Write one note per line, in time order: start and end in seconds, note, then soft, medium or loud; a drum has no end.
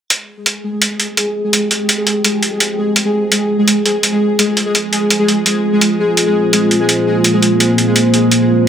0.10 8.68 G#3 medium
0.10 8.68 F4 medium
0.10 8.68 G#4 medium
0.10 8.68 C5 medium
0.10 5.78 G5 medium
0.10 closed hi-hat medium
0.46 closed hi-hat medium
0.82 closed hi-hat medium
1.00 closed hi-hat soft
1.17 closed hi-hat medium
1.53 closed hi-hat medium
1.71 closed hi-hat soft
1.89 closed hi-hat medium
2.07 closed hi-hat soft
2.24 closed hi-hat medium
2.43 closed hi-hat soft
2.60 closed hi-hat medium
2.96 closed hi-hat medium
3.32 closed hi-hat medium
3.68 closed hi-hat medium
3.86 closed hi-hat soft
4.03 closed hi-hat medium
4.39 closed hi-hat medium
4.57 closed hi-hat soft
4.75 closed hi-hat medium
4.93 closed hi-hat soft
5.10 closed hi-hat medium
5.28 closed hi-hat soft
5.46 closed hi-hat medium
5.81 8.68 A#3 medium
5.81 closed hi-hat medium
6.17 closed hi-hat medium
6.53 closed hi-hat medium
6.71 closed hi-hat soft
6.89 closed hi-hat medium
7.24 closed hi-hat medium
7.42 closed hi-hat soft
7.60 closed hi-hat medium
7.78 closed hi-hat soft
7.96 closed hi-hat medium
8.14 closed hi-hat soft
8.31 closed hi-hat medium